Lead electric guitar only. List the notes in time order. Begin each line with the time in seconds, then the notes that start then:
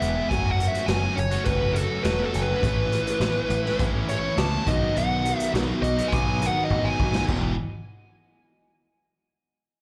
Already playing: E5
0.29 G#5
0.50 F#5
0.67 E5
0.86 G#5
1.16 C#5
1.45 B4
1.74 A4
2.03 B4
2.23 A4
2.41 B4
4.09 C#5
4.38 A5
4.68 D#5
4.98 F#5
5.39 E5
5.83 D#5
6.08 G#5
6.47 F#5
6.65 D#5
6.85 G#5